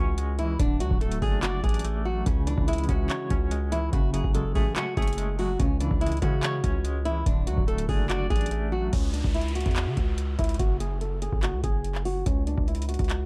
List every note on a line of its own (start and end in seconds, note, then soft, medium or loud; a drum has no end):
0.00 0.57 C#2 loud
0.00 0.18 E3 medium
0.00 0.17 G#3 medium
0.00 0.59 C#4 medium
0.00 0.35 F#4 medium
0.00 0.60 C#5 loud
0.18 0.59 G#3 medium
0.18 closed hi-hat medium
0.39 0.60 E3 medium
0.39 0.57 E4 medium
0.39 closed hi-hat medium
0.60 0.82 D1 loud
0.60 1.64 D3 loud
0.60 0.78 D4 medium
0.60 kick loud
0.60 closed hi-hat medium
0.80 0.90 D2 loud
0.80 1.85 F#3 medium
0.80 0.99 F#4 medium
0.80 closed hi-hat medium
0.91 1.21 D1 loud
0.91 kick loud
1.01 1.83 A3 medium
1.01 1.20 A4 medium
1.01 closed hi-hat soft
1.12 closed hi-hat medium
1.22 1.62 F#1 loud
1.22 1.63 D4 medium
1.22 1.40 G#4 medium
1.22 kick loud
1.22 open hi-hat soft
1.42 1.61 F#4 medium
1.42 2.26 D5 loud
1.42 clap loud
1.42 closed hi-hat medium
1.64 2.24 A1 loud
1.64 2.26 D4 medium
1.64 2.03 G#4 medium
1.64 kick medium
1.64 closed hi-hat soft
1.69 closed hi-hat medium
1.74 closed hi-hat medium
1.79 closed hi-hat medium
1.84 2.26 A3 medium
1.84 closed hi-hat medium
2.05 2.26 F#3 medium
2.05 2.24 F#4 medium
2.26 2.56 C#2 loud
2.26 3.30 C#3 loud
2.26 2.45 C#4 medium
2.26 kick loud
2.26 closed hi-hat medium
2.47 3.51 E3 medium
2.47 2.65 D4 medium
2.47 closed hi-hat medium
2.57 2.87 C#2 loud
2.57 kick medium
2.68 3.50 G#3 medium
2.68 2.86 E4 medium
2.68 closed hi-hat medium
2.73 closed hi-hat medium
2.78 closed hi-hat medium
2.84 closed hi-hat soft
2.89 3.09 C#2 loud
2.89 3.29 C#4 medium
2.89 3.68 F#4 medium
2.89 kick medium
2.89 closed hi-hat medium
3.10 3.93 C#5 loud
3.10 clap loud
3.10 closed hi-hat medium
3.30 3.90 C#2 loud
3.30 3.93 C#4 medium
3.30 kick medium
3.30 closed hi-hat medium
3.51 3.93 G#3 medium
3.51 closed hi-hat medium
3.72 3.93 E3 medium
3.72 3.90 E4 medium
3.72 closed hi-hat medium
3.93 4.23 F#1 loud
3.93 4.97 C#3 loud
3.93 4.11 F#4 medium
3.93 kick loud
3.93 closed hi-hat medium
4.13 5.18 F#3 medium
4.13 4.32 G#4 medium
4.13 closed hi-hat medium
4.24 4.54 F#1 loud
4.24 kick medium
4.35 5.17 G#3 medium
4.35 4.53 A4 medium
4.35 closed hi-hat medium
4.55 4.75 A1 loud
4.55 4.96 A3 medium
4.55 4.74 G#4 medium
4.55 kick medium
4.55 open hi-hat medium
4.76 5.59 C#4 loud
4.76 4.95 F#4 medium
4.76 clap loud
4.76 closed hi-hat medium
4.97 5.57 F#1 loud
4.97 5.59 A3 medium
4.97 5.36 G#4 medium
4.97 kick medium
4.97 closed hi-hat soft
5.02 closed hi-hat medium
5.07 closed hi-hat medium
5.13 closed hi-hat medium
5.18 5.59 G#3 medium
5.18 closed hi-hat medium
5.39 5.59 F#3 medium
5.39 5.57 F#4 medium
5.39 open hi-hat medium
5.59 5.90 C#2 loud
5.59 6.64 C#3 medium
5.59 5.78 C#4 medium
5.59 kick loud
5.59 closed hi-hat medium
5.80 6.84 E3 medium
5.80 5.99 D4 medium
5.80 closed hi-hat medium
5.91 6.21 C#2 loud
5.91 kick medium
6.01 6.83 G#3 medium
6.01 6.20 E4 medium
6.01 closed hi-hat medium
6.06 closed hi-hat medium
6.12 closed hi-hat medium
6.17 closed hi-hat soft
6.22 6.62 C#3 loud
6.22 6.62 C#4 medium
6.22 7.01 F#4 medium
6.22 kick medium
6.22 closed hi-hat medium
6.43 7.26 C#5 loud
6.43 clap loud
6.43 closed hi-hat medium
6.64 7.24 C#2 loud
6.64 7.26 C#4 medium
6.64 kick medium
6.64 closed hi-hat medium
6.84 7.26 G#3 medium
6.84 closed hi-hat medium
7.05 7.26 E3 medium
7.05 7.24 E4 medium
7.05 closed hi-hat medium
7.26 7.49 D1 loud
7.26 8.30 D3 loud
7.26 7.45 D4 medium
7.26 kick loud
7.26 closed hi-hat medium
7.47 7.57 D2 loud
7.47 8.51 F#3 medium
7.47 7.65 F#4 medium
7.47 closed hi-hat medium
7.58 7.87 D1 loud
7.58 kick medium
7.67 8.50 A3 medium
7.67 7.86 A4 medium
7.67 closed hi-hat soft
7.78 closed hi-hat medium
7.89 8.29 F#1 loud
7.89 8.29 D4 medium
7.89 8.07 G#4 medium
7.89 kick loud
7.89 open hi-hat medium
8.09 8.28 F#4 medium
8.09 8.93 D5 loud
8.09 clap loud
8.09 closed hi-hat medium
8.30 8.90 A1 loud
8.30 8.93 D4 medium
8.30 8.69 G#4 medium
8.30 kick medium
8.30 closed hi-hat soft
8.36 closed hi-hat medium
8.41 closed hi-hat medium
8.46 closed hi-hat medium
8.51 8.93 A3 medium
8.51 closed hi-hat medium
8.72 8.93 F#3 medium
8.72 8.90 F#4 medium
8.93 9.23 C#2 loud
8.93 9.11 C#4 medium
8.93 kick loud
8.93 closed hi-hat medium
8.93 downlifter medium
9.14 9.32 D4 medium
9.14 closed hi-hat medium
9.24 9.64 C#2 loud
9.24 kick medium
9.34 9.53 E4 medium
9.34 closed hi-hat soft
9.41 closed hi-hat medium
9.48 closed hi-hat medium
9.55 10.35 F#4 medium
9.55 closed hi-hat medium
9.61 closed hi-hat medium
9.66 9.88 E2 loud
9.66 kick medium
9.66 closed hi-hat soft
9.71 closed hi-hat soft
9.76 clap loud
9.76 closed hi-hat medium
9.87 9.97 C#3 loud
9.97 10.37 C#2 loud
9.97 kick medium
9.97 closed hi-hat medium
10.18 closed hi-hat medium
10.39 10.59 C#2 loud
10.39 10.57 E4 medium
10.39 kick medium
10.39 closed hi-hat medium
10.44 closed hi-hat medium
10.49 closed hi-hat medium
10.54 closed hi-hat medium
10.59 11.29 F#1 loud
10.59 10.78 F#4 medium
10.59 kick loud
10.59 closed hi-hat medium
10.80 10.99 G#4 medium
10.80 closed hi-hat medium
11.01 11.20 A4 medium
11.01 closed hi-hat medium
11.22 11.40 G#4 medium
11.22 closed hi-hat medium
11.32 11.55 F#1 loud
11.32 kick medium
11.43 11.61 F#4 medium
11.43 clap loud
11.43 closed hi-hat medium
11.53 11.63 C#2 loud
11.64 12.24 F#1 loud
11.64 12.03 G#4 medium
11.64 kick medium
11.64 closed hi-hat medium
11.84 closed hi-hat medium
11.95 clap medium
12.05 12.24 F#4 medium
12.05 open hi-hat medium
12.26 12.56 C#2 loud
12.26 12.45 C#4 medium
12.26 kick loud
12.26 closed hi-hat medium
12.47 12.65 D4 medium
12.47 closed hi-hat medium
12.57 12.97 C#2 loud
12.57 kick medium
12.68 12.86 E4 medium
12.68 closed hi-hat soft
12.75 closed hi-hat medium
12.82 closed hi-hat medium
12.89 13.26 F#4 medium
12.89 closed hi-hat medium
12.94 closed hi-hat medium
12.99 13.26 C#2 loud
12.99 kick medium
12.99 closed hi-hat soft
13.04 closed hi-hat soft
13.10 clap loud
13.10 closed hi-hat medium